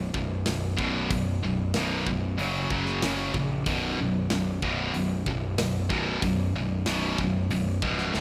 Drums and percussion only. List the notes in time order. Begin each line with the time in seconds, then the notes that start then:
0.14 kick
0.46 snare, open hi-hat
0.78 kick
1.11 kick, open hi-hat
1.74 snare, open hi-hat
2.07 kick
2.39 open hi-hat
2.70 kick
2.86 snare
3.02 snare, open hi-hat
3.34 kick
3.66 kick, open hi-hat
4.30 snare, open hi-hat
4.62 kick
4.94 open hi-hat
5.26 kick
5.58 snare, open hi-hat
5.90 kick
6.22 kick, open hi-hat
6.86 snare, open hi-hat
7.18 kick
7.50 open hi-hat
7.82 kick
7.98 snare
8.14 snare